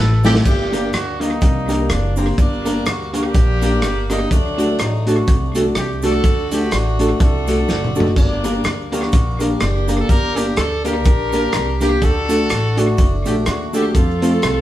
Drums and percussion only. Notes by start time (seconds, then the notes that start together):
0.24 snare, cabasa
0.35 snare
0.45 kick, crash, cabasa
0.73 closed hi-hat, cabasa
0.93 cross-stick, closed hi-hat, cabasa
1.21 closed hi-hat, cabasa
1.41 kick, closed hi-hat, cabasa
1.69 closed hi-hat, cabasa
1.89 cross-stick, closed hi-hat, cabasa
2.16 open hi-hat, cabasa
2.38 kick, closed hi-hat, cabasa
2.66 closed hi-hat, cabasa
2.86 cross-stick, closed hi-hat, cabasa
3.14 closed hi-hat, cabasa
3.34 kick, closed hi-hat, cabasa
3.62 closed hi-hat, cabasa
3.82 cross-stick, closed hi-hat, cabasa
4.10 cross-stick, closed hi-hat, cabasa
4.31 kick, closed hi-hat, cabasa
4.58 closed hi-hat, cabasa
4.79 cross-stick, closed hi-hat, cabasa
5.07 closed hi-hat, cabasa
5.27 kick, closed hi-hat, cabasa
5.55 closed hi-hat, cabasa
5.75 cross-stick, closed hi-hat, cabasa
6.02 closed hi-hat, cabasa
6.24 kick, closed hi-hat, cabasa
6.51 closed hi-hat, cabasa
6.71 cross-stick, closed hi-hat, cabasa
6.99 closed hi-hat, cabasa
7.20 kick, closed hi-hat, cabasa
7.47 closed hi-hat, cabasa
7.69 snare, cabasa
7.84 mid tom
7.96 cabasa
8.00 floor tom
8.16 kick, splash, cabasa
8.44 closed hi-hat, cabasa
8.64 cross-stick, closed hi-hat, cabasa
8.92 closed hi-hat, cabasa
9.03 cross-stick
9.12 kick, closed hi-hat, cabasa
9.40 closed hi-hat, cabasa
9.60 cross-stick, closed hi-hat, cabasa
9.88 closed hi-hat, cabasa
10.09 kick, closed hi-hat, cabasa
10.36 closed hi-hat, cabasa
10.56 cross-stick, closed hi-hat, cabasa
10.85 closed hi-hat, cabasa
11.05 kick, closed hi-hat, cabasa
11.33 closed hi-hat, cabasa
11.52 cross-stick, closed hi-hat, cabasa
11.81 closed hi-hat, cabasa
12.02 kick, closed hi-hat, cabasa
12.29 closed hi-hat, cabasa
12.49 cross-stick, closed hi-hat, cabasa
12.77 closed hi-hat, cabasa
12.98 kick, closed hi-hat, cabasa
13.26 closed hi-hat, cabasa
13.46 cross-stick, closed hi-hat, cabasa
13.74 closed hi-hat, cabasa
13.95 kick, closed hi-hat, cabasa
14.22 closed hi-hat, cabasa
14.42 cross-stick, closed hi-hat, cabasa